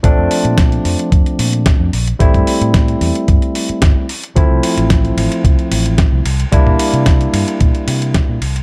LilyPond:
<<
  \new Staff \with { instrumentName = "Tine electric piano" } { \time 4/4 \key d \minor \tempo 4 = 111 <f a c' d'>2.~ <f a c' d'>8 r8 | <g a c' e'>2.~ <g a c' e'>8 r8 | <f a c' e'>2.~ <f a c' e'>8 r8 | <g bes d' e'>2.~ <g bes d' e'>8 r8 | }
  \new Staff \with { instrumentName = "Fingered electric bass" } { \clef bass \time 4/4 \key d \minor bes,,16 f,16 r16 bes,8 r16 f,16 r16 f,16 r16 bes,8 r16 f,16 bes,,16 r16 | a,,16 g,16 r16 a,8 r16 e,16 r16 g,16 r8. g,,16 r8. | d,16 c,16 r16 a,,8 r16 a,,16 r16 c,16 r16 a,,8 r16 c,16 c,16 r16 | c,16 bes,16 r16 c8 r16 g,16 r16 bes,16 r16 c8 r16 bes,16 c,16 r16 | }
  \new DrumStaff \with { instrumentName = "Drums" } \drummode { \time 4/4 <hh bd>8 hho16 hh16 <hh bd sn>16 hh16 hho16 hh16 <hh bd>16 hh16 hho16 hh16 <hh bd sn>8 hho16 hh16 | <hh bd>16 <hh bd>16 hho16 hh16 <hh bd sn>16 hh16 hho16 hh16 <hh bd>16 hh16 hho16 hh16 <hh bd sn>8 hho16 hh16 | <hh bd>8 <hho cymr>16 hh16 <hh bd sn>16 hh16 <hho cymr>16 hh16 <hh bd>16 hh16 <hho cymr>16 hh16 <hh bd sn>8 <hho cymr>16 hh16 | <hh bd>16 bd16 <hho cymr>16 hh16 <hh bd sn>16 hh16 <hho cymr>16 hh16 <hh bd>16 hh16 <hho cymr>16 hh16 <hh bd sn>8 <hho cymr>16 hh16 | }
>>